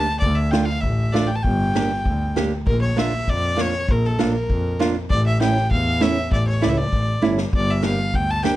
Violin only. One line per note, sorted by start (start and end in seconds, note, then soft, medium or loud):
0.00 0.19 A5 loud
0.20 0.37 D5 medium
0.35 0.52 E5 medium
0.51 0.67 G5 medium
0.65 0.82 F5 medium
0.81 1.14 E5 medium
1.13 1.28 D5 medium
1.27 1.37 G5 medium
1.35 1.44 A5 medium
1.43 2.36 G5 medium
2.67 2.81 A#4 medium
2.82 3.00 C#5 medium
2.98 3.31 E5 medium
3.29 3.62 D5 medium
3.61 3.92 C#5 loud
3.91 4.08 A#4 medium
4.06 4.21 A4 medium
4.21 4.32 A4 medium
4.32 4.81 A#4 medium
5.10 5.24 D5 medium
5.26 5.40 E5 medium
5.42 5.70 G5 medium
5.72 6.03 F5 medium
6.02 6.32 E5 loud
6.32 6.46 D5 medium
6.48 6.65 C#5 medium
6.63 6.71 D5 medium
6.69 6.79 E5 medium
6.77 7.23 D5 medium
7.56 7.72 D5 medium
7.71 7.85 E5 medium
7.85 8.17 F5 medium
8.15 8.32 G5 medium
8.30 8.44 A5 loud
8.44 8.56 G5 medium